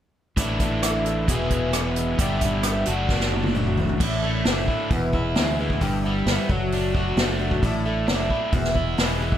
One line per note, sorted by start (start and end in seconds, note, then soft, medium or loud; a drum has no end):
0.37 1.26 A1 medium
0.37 0.60 A2 medium
0.37 0.60 D3 medium
0.37 1.27 E3 medium
0.37 0.60 A3 medium
0.37 0.60 D4 medium
0.37 0.59 E4 medium
0.37 kick medium
0.37 closed hi-hat medium
0.60 0.83 A3 soft
0.60 0.83 D4 soft
0.60 0.82 E4 soft
0.60 kick medium
0.60 closed hi-hat soft
0.83 1.05 D3 medium
0.83 1.06 A3 medium
0.83 1.05 D4 medium
0.83 1.03 E4 medium
0.83 cross-stick medium
0.83 closed hi-hat medium
1.05 1.28 A3 soft
1.05 1.28 D4 soft
1.05 1.27 E4 soft
1.05 closed hi-hat medium
1.28 2.17 E1 medium
1.28 1.73 E2 medium
1.28 1.73 B2 medium
1.28 1.71 E3 medium
1.28 1.72 G#3 medium
1.28 1.73 B3 medium
1.28 1.73 E4 medium
1.28 2.19 G#4 medium
1.28 kick medium
1.28 closed hi-hat medium
1.50 kick medium
1.50 closed hi-hat soft
1.72 1.95 E3 medium
1.72 1.96 G#3 medium
1.72 1.95 B3 medium
1.72 1.95 E4 medium
1.72 cross-stick medium
1.72 closed hi-hat medium
1.96 2.19 E3 soft
1.96 2.19 G#3 soft
1.96 2.19 B3 soft
1.96 2.18 E4 soft
1.96 closed hi-hat medium
2.19 2.85 G1 medium
2.19 2.41 G2 medium
2.19 2.42 D3 medium
2.19 2.42 E3 medium
2.19 2.42 G3 medium
2.19 2.41 B3 medium
2.19 2.87 D4 medium
2.19 2.40 E4 medium
2.19 2.87 G4 medium
2.19 kick medium
2.19 closed hi-hat medium
2.41 2.62 E3 soft
2.41 2.63 G3 soft
2.41 2.64 B3 soft
2.41 2.64 E4 soft
2.41 kick medium
2.41 closed hi-hat medium
2.63 2.86 E3 soft
2.63 2.86 G3 medium
2.63 2.87 B3 medium
2.63 2.85 E4 medium
2.63 cross-stick medium
2.63 closed hi-hat medium
2.86 3.98 F#1 medium
2.86 3.98 F#3 medium
2.86 3.54 A3 soft
2.86 3.55 D4 soft
2.86 3.54 F#4 soft
2.86 closed hi-hat soft
2.90 4.00 F#4 medium
3.09 kick medium
3.09 snare soft
3.20 snare soft
3.32 high tom soft
3.44 high tom soft
3.55 3.77 F#3 medium
3.55 3.78 A3 medium
3.55 3.78 D4 medium
3.55 3.76 F#4 medium
3.55 mid tom medium
3.67 mid tom medium
3.77 4.00 A3 soft
3.77 4.01 D4 soft
3.77 4.00 F#4 soft
3.77 floor tom medium
3.89 floor tom medium
4.00 4.43 A1 medium
4.00 4.23 A2 medium
4.00 4.23 D3 medium
4.00 4.23 A3 medium
4.00 4.23 D4 medium
4.00 4.21 E4 medium
4.00 kick medium
4.00 crash medium
4.22 4.45 A3 soft
4.22 4.46 D4 soft
4.22 4.45 E4 soft
4.45 4.66 F#1 medium
4.45 4.91 D3 medium
4.45 4.91 A3 medium
4.45 4.91 D4 medium
4.45 4.92 E4 medium
4.45 snare medium
4.45 open hi-hat soft
4.68 4.90 E4 medium
4.68 kick medium
4.91 5.33 E1 medium
4.91 5.13 E2 medium
4.91 5.14 B2 medium
4.91 5.14 E3 medium
4.91 5.13 G#3 medium
4.91 5.13 B3 medium
4.91 5.12 E4 medium
4.91 kick medium
4.91 open hi-hat soft
5.13 5.34 E3 soft
5.13 5.35 G#3 soft
5.13 5.35 B3 soft
5.13 5.35 E4 soft
5.13 kick medium
5.35 5.79 D2 medium
5.35 5.58 E3 medium
5.35 5.59 G#3 medium
5.35 5.58 B3 medium
5.35 5.57 E4 medium
5.35 snare medium
5.35 open hi-hat soft
5.59 5.80 E3 soft
5.59 5.82 G#3 soft
5.59 5.81 B3 soft
5.59 5.81 E4 soft
5.70 kick medium
5.81 6.24 G1 medium
5.81 6.04 G2 medium
5.81 6.04 D3 medium
5.81 6.04 E3 medium
5.81 6.04 G3 medium
5.81 6.04 B3 medium
5.81 6.03 E4 medium
5.81 kick medium
5.81 open hi-hat soft
6.04 6.26 E3 soft
6.04 6.26 G3 soft
6.04 6.27 B3 soft
6.04 6.26 E4 soft
6.26 6.37 G1 medium
6.26 6.49 E3 medium
6.26 6.49 G3 medium
6.26 6.49 B3 medium
6.26 6.48 E4 medium
6.26 snare medium
6.26 open hi-hat soft
6.49 7.13 F#1 medium
6.49 6.95 F#3 medium
6.49 6.95 A3 medium
6.49 6.95 D4 medium
6.49 6.93 F#4 medium
6.49 kick medium
6.72 7.63 D4 medium
6.72 open hi-hat soft
6.94 7.17 A3 soft
6.94 7.17 D4 soft
6.94 7.17 F#4 soft
6.94 kick medium
7.17 7.59 F#1 medium
7.17 7.40 F#3 medium
7.17 7.40 A3 medium
7.17 7.39 D4 medium
7.17 7.38 F#4 medium
7.17 snare medium
7.17 open hi-hat soft
7.39 7.63 F#3 medium
7.39 7.63 A3 soft
7.39 7.63 D4 soft
7.39 7.62 F#4 medium
7.51 kick medium
7.63 8.05 A1 medium
7.63 7.85 A2 medium
7.63 7.86 D3 medium
7.63 7.86 A3 medium
7.63 7.86 D4 medium
7.63 7.84 E4 medium
7.63 kick medium
7.63 open hi-hat soft
7.86 8.08 A3 soft
7.86 8.08 D4 soft
7.86 8.08 E4 soft
8.08 8.29 F#1 medium
8.08 8.53 D3 medium
8.08 8.54 A3 medium
8.08 8.54 D4 medium
8.08 8.53 E4 medium
8.08 snare medium
8.08 open hi-hat soft
8.30 8.53 E4 medium
8.30 kick medium
8.53 8.95 E1 medium
8.53 8.76 E2 medium
8.53 8.76 B2 medium
8.53 8.76 E3 medium
8.53 8.76 G#3 medium
8.53 8.76 B3 medium
8.53 8.75 E4 medium
8.53 kick medium
8.53 open hi-hat soft
8.64 snare soft
8.76 8.96 E3 soft
8.76 8.97 G#3 soft
8.76 8.98 B3 soft
8.76 8.98 E4 soft
8.76 kick medium
8.97 9.38 E1 medium
8.97 9.21 E3 medium
8.97 9.21 G#3 medium
8.97 9.19 B3 medium
8.97 9.19 E4 medium
8.97 snare medium
8.97 open hi-hat soft
9.20 9.38 E3 soft
9.20 9.38 G#3 soft
9.20 9.38 B3 soft
9.20 9.38 E4 medium
9.32 kick medium